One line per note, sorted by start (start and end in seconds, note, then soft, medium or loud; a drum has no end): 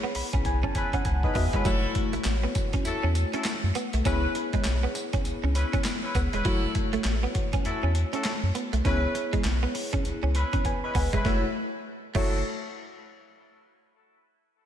0.00 1.61 B3 medium
0.00 0.13 B3 medium
0.00 1.02 E4 medium
0.00 1.02 G#4 medium
0.00 1.02 C#5 medium
0.15 0.22 B1 soft
0.15 0.43 B5 medium
0.15 muted clean electric guitar stroke soft
0.15 open hi-hat medium
0.33 0.42 B1 medium
0.33 0.43 C#4 medium
0.33 kick medium
0.33 closed hi-hat medium
0.45 0.66 B1 loud
0.45 0.62 G#5 medium
0.45 kick medium
0.45 closed hi-hat medium
0.63 0.73 C#4 medium
0.63 0.75 A5 medium
0.63 kick medium
0.75 0.97 C#4 medium
0.75 0.97 E4 medium
0.75 0.97 B4 medium
0.75 0.92 G#5 medium
0.75 muted clean electric guitar stroke soft
0.75 kick medium
0.75 closed hi-hat medium
0.93 1.03 C#4 medium
0.93 1.05 F#5 medium
0.93 kick medium
0.93 closed hi-hat medium
1.05 1.26 C#2 medium
1.05 1.22 G#5 medium
1.05 muted clean electric guitar stroke soft
1.05 kick medium
1.05 closed hi-hat medium
1.23 1.40 C#4 medium
1.23 1.35 D#4 medium
1.23 1.41 E4 medium
1.23 1.41 B4 medium
1.23 1.35 B4 medium
1.23 1.35 D#5 medium
1.23 kick medium
1.35 1.48 E2 loud
1.35 1.50 B3 medium
1.35 1.53 F#4 medium
1.35 1.53 D#5 medium
1.35 1.63 E5 medium
1.35 kick medium
1.35 open hi-hat medium
1.53 1.63 G#3 medium
1.53 1.70 C#4 medium
1.53 1.64 E4 medium
1.53 1.65 E4 medium
1.53 1.71 B4 medium
1.53 1.66 C#5 medium
1.53 kick medium
1.53 closed hi-hat soft
1.65 1.86 F#1 loud
1.65 1.80 F#3 medium
1.65 4.01 A3 medium
1.65 1.93 E4 loud
1.65 4.01 E4 medium
1.65 1.93 F#4 medium
1.65 4.02 F#4 medium
1.65 1.93 A4 loud
1.65 4.02 C#5 medium
1.65 kick loud
1.65 closed hi-hat medium
1.65 tambourine medium
1.95 muted clean electric guitar stroke soft
1.95 kick loud
1.95 closed hi-hat medium
2.13 2.18 A1 soft
2.13 2.23 A3 medium
2.13 closed hi-hat medium
2.24 2.46 A1 loud
2.24 snare loud
2.24 clap medium
2.24 closed hi-hat medium
2.24 tambourine medium
2.43 2.53 B3 medium
2.55 muted clean electric guitar stroke medium
2.55 kick medium
2.55 closed hi-hat medium
2.55 tambourine medium
2.73 2.83 C#4 medium
2.73 kick medium
2.73 closed hi-hat medium
2.85 2.93 E2 soft
2.85 3.07 E4 medium
2.85 3.07 F#4 medium
2.85 3.07 A4 medium
2.85 closed hi-hat medium
2.85 tambourine medium
3.03 3.24 E2 medium
3.03 3.13 C#4 medium
3.15 muted clean electric guitar stroke soft
3.15 closed hi-hat medium
3.15 tambourine medium
3.33 3.43 C#4 medium
3.33 3.50 E4 medium
3.33 3.51 F#4 medium
3.33 3.51 A4 medium
3.33 closed hi-hat soft
3.44 muted clean electric guitar stroke soft
3.44 snare loud
3.44 clap loud
3.44 closed hi-hat medium
3.44 tambourine loud
3.64 3.72 F#2 medium
3.75 3.90 B3 medium
3.75 closed hi-hat medium
3.75 tambourine medium
3.93 4.02 B1 loud
3.93 4.03 A3 medium
3.93 closed hi-hat medium
4.05 4.26 C#2 loud
4.05 6.41 B3 medium
4.05 4.33 C#4 loud
4.05 4.20 C#4 medium
4.05 4.33 E4 medium
4.05 6.41 E4 medium
4.05 6.42 G#4 medium
4.05 4.33 B4 loud
4.05 6.42 C#5 medium
4.05 kick loud
4.05 closed hi-hat medium
4.05 tambourine medium
4.35 muted clean electric guitar stroke soft
4.35 closed hi-hat medium
4.53 4.58 B1 soft
4.53 4.63 G#3 medium
4.53 kick medium
4.53 closed hi-hat soft
4.64 4.86 B1 medium
4.64 snare loud
4.64 clap loud
4.64 closed hi-hat medium
4.64 tambourine medium
4.83 4.93 B3 medium
4.95 muted clean electric guitar stroke soft
4.95 closed hi-hat medium
4.95 tambourine medium
5.13 5.23 C#4 medium
5.13 kick medium
5.13 closed hi-hat medium
5.25 5.33 C#2 soft
5.25 closed hi-hat medium
5.25 tambourine medium
5.43 5.64 C#2 loud
5.43 5.53 C#4 medium
5.55 5.77 C#4 medium
5.55 5.77 E4 medium
5.55 5.77 B4 medium
5.55 muted clean electric guitar stroke soft
5.55 closed hi-hat medium
5.55 tambourine medium
5.73 5.83 C#4 medium
5.73 kick loud
5.73 closed hi-hat soft
5.84 muted clean electric guitar stroke soft
5.84 snare loud
5.84 clap loud
5.84 closed hi-hat medium
5.84 tambourine loud
6.03 6.20 C#4 medium
6.03 6.21 E4 medium
6.03 6.21 B4 medium
6.15 6.28 C#2 loud
6.15 6.30 B3 medium
6.15 kick medium
6.15 closed hi-hat medium
6.15 tambourine medium
6.33 6.42 E1 medium
6.33 6.43 G#3 medium
6.33 6.50 C#4 medium
6.33 6.44 E4 medium
6.33 6.51 B4 medium
6.33 closed hi-hat medium
6.45 6.66 F#1 loud
6.45 6.60 F#3 medium
6.45 8.81 A3 medium
6.45 6.73 E4 loud
6.45 8.81 E4 medium
6.45 6.73 F#4 loud
6.45 8.82 F#4 medium
6.45 6.73 A4 loud
6.45 8.82 C#5 medium
6.45 kick loud
6.45 closed hi-hat medium
6.75 muted clean electric guitar stroke soft
6.75 kick medium
6.75 closed hi-hat medium
6.93 6.98 A1 soft
6.93 7.03 A3 medium
6.93 closed hi-hat soft
7.04 7.26 A1 loud
7.04 snare loud
7.04 clap loud
7.04 closed hi-hat medium
7.23 7.33 B3 medium
7.35 muted clean electric guitar stroke soft
7.35 kick medium
7.35 closed hi-hat medium
7.53 7.63 C#4 medium
7.53 kick medium
7.53 closed hi-hat medium
7.65 7.72 E2 medium
7.65 7.87 E4 medium
7.65 7.87 F#4 medium
7.65 7.87 A4 medium
7.65 closed hi-hat medium
7.83 8.04 E2 loud
7.83 7.93 C#4 medium
7.95 muted clean electric guitar stroke soft
7.95 closed hi-hat medium
8.13 8.23 C#4 medium
8.13 8.30 E4 medium
8.13 8.31 F#4 medium
8.13 8.31 A4 medium
8.13 closed hi-hat medium
8.24 muted clean electric guitar stroke soft
8.24 snare loud
8.24 clap loud
8.24 closed hi-hat medium
8.43 8.51 F#2 medium
8.55 8.70 B3 medium
8.55 closed hi-hat medium
8.73 8.81 B1 loud
8.73 8.83 A3 medium
8.73 closed hi-hat soft
8.85 9.06 C#2 loud
8.85 11.21 B3 medium
8.85 9.13 C#4 loud
8.85 9.00 C#4 medium
8.85 9.13 E4 medium
8.85 11.21 E4 medium
8.85 10.33 G#4 medium
8.85 9.13 B4 loud
8.85 10.33 C#5 medium
8.85 kick loud
8.85 closed hi-hat medium
9.15 muted clean electric guitar stroke soft
9.15 closed hi-hat medium
9.33 9.38 B1 soft
9.33 9.43 G#3 medium
9.33 kick medium
9.33 closed hi-hat medium
9.44 9.66 B1 medium
9.44 snare loud
9.44 clap loud
9.44 closed hi-hat medium
9.63 9.72 B3 medium
9.75 muted clean electric guitar stroke medium
9.75 open hi-hat medium
9.93 10.03 C#4 medium
9.93 kick medium
9.93 closed hi-hat medium
10.05 10.12 C#2 medium
10.05 closed hi-hat medium
10.23 10.44 C#2 medium
10.23 10.33 C#4 medium
10.35 10.57 C#4 medium
10.35 10.57 E4 medium
10.35 10.57 B4 medium
10.35 muted clean electric guitar stroke soft
10.35 closed hi-hat medium
10.53 10.63 C#4 medium
10.53 kick loud
10.53 closed hi-hat soft
10.65 10.83 B4 medium
10.65 10.83 G#5 medium
10.65 muted clean electric guitar stroke soft
10.65 kick medium
10.65 closed hi-hat medium
10.83 11.00 C#4 medium
10.83 11.00 E4 medium
10.83 11.01 B4 medium
10.83 10.95 D#5 medium
10.83 10.95 B5 medium
10.95 11.08 C#2 loud
10.95 11.10 B3 medium
10.95 11.13 B4 medium
10.95 11.13 G#5 medium
10.95 kick medium
10.95 open hi-hat medium
11.13 11.21 E1 medium
11.13 11.23 G#3 medium
11.13 11.30 C#4 medium
11.13 11.23 E4 medium
11.13 11.42 G#4 soft
11.13 11.31 B4 medium
11.13 11.42 E5 medium
11.13 kick loud
11.13 closed hi-hat medium
11.25 11.44 F#1 medium
11.25 11.37 A3 medium
11.25 11.45 A3 medium
11.25 11.44 E4 medium
11.25 11.45 E4 medium
11.25 11.44 F#4 medium
11.25 11.44 A4 medium
11.25 11.44 C#5 medium
11.25 kick loud
11.25 snare medium
12.15 12.43 F#1 medium
12.15 12.33 A3 medium
12.15 12.43 A3 medium
12.15 12.38 E4 medium
12.15 12.43 E4 medium
12.15 12.39 F#4 medium
12.15 12.43 F#4 medium
12.15 12.39 A4 medium
12.15 12.43 C#5 loud
12.15 kick loud
12.15 crash medium